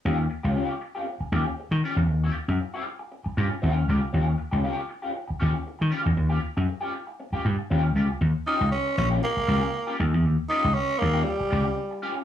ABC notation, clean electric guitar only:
X:1
M:4/4
L:1/16
Q:1/4=118
K:Ebmix
V:1 name="Clean electric guitar"
[DFG] z2 [DFG] [DFG] z2 [DFG] z2 [DFG] z3 [DFG] z | z [DFG]2 z2 [DFG]2 z3 [DFG] z [DFG]2 [DFG] z | [DFG] z2 [DFG] [DFG] z2 [DFG] z2 [DFG] z3 [DFG] z | z [DFG] z3 [DFG] z3 [DFG] z2 [DFG] z [DFG] z |
z2 [DFG] z4 [DFG] z2 [DFG] z2 [DFG] z2 | z2 [DFG] z4 [DFG] z2 [DFG] z3 [DFG] z |]